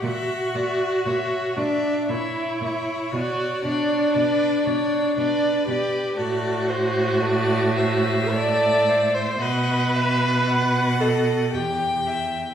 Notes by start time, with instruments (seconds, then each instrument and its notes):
0.03 cello A#2, viola F#4, violin E5 F#5
0.55 cello A#2, violin D5 E5
1.05 cello A#2, violin C#5 E5
1.57 cello A#2, viola D4, violin D5 E5
2.09 cello A#2, viola E4, violin C#5 E5
2.61 cello A#2, violin E5
3.13 cello B2, viola F#4, violin D5
3.64 cello B2, viola D4, violin D5
4.14 cello B2, violin B4 D5
4.65 cello B2, violin C#5 D5
5.16 cello B2, viola D4, violin B4 D5
5.67 cello B2, viola G4, violin D5
6.17 cello A2, viola F#4, violin A4 D5
6.68 violin C5
7.21 violin A4 D5
7.77 violin C5 E5
8.34 violin A4, viola D5
8.89 violin C5
9.14 viola C5
9.41 cello B2, viola B4, violin D#5 F#5
9.95 violin D#5 E5
10.48 violin F#5
11.00 viola A4, violin D#5
11.53 cello E2, viola G4, violin G5
12.08 violin E5